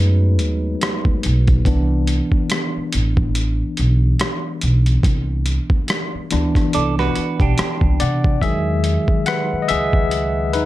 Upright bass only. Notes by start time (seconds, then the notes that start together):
Already playing: F#2
0.41 D#2
1.06 C#2
1.26 B1
1.67 C2
2.77 muted upright bass stroke
2.95 A1
3.79 B1
4.63 B1
5.05 C2
6.15 muted upright bass stroke
6.33 D2
6.75 C2
7.17 muted upright bass stroke
7.41 B1
7.83 C2
8.01 C3
8.43 E2
9.53 muted upright bass stroke
9.71 C#2
10.55 D#2